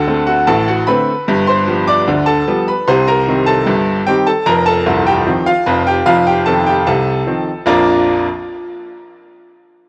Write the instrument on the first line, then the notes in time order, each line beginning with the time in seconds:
grand piano
Already playing: D2 D3 F#4 A4 F#5 A5
0.07 D3 A3 C4
0.27 F#4 F#5
0.47 A1 A2 A4 A5
0.68 F#4 F#5
0.87 D3 A3 C4 B4 B5
1.28 G1 G2
1.47 C5 C6
1.67 F3 G3 B3
1.87 D5 D6
2.07 D2 D3
2.26 A4 A5
2.47 F3 G3 B3
2.68 B4 B5
2.88 C2 C3 C5 C6
3.08 A#4 A#5
3.27 D#3 G3 C4
3.46 A4 A5
3.66 G1 G2
4.07 D#3 G3 C4 G4 G5
4.27 A4 A5
4.46 F1 F2 A#4 A#5
4.66 A4 A5
4.86 C1 C2
5.06 G4 G5
5.26 D#3 F3 C4
5.46 F4 F5
5.66 F1 F2
5.87 G4 G5
6.06 F1 F2 F4 F5
6.27 G4 G5
6.46 D#3 F3 C4 A4 A5
6.67 G4 G5
6.87 C2 C3 A4 A5
7.27 D#3 F3 C4
7.66 A#1 F2 F3 A#3 D4 F4 A#5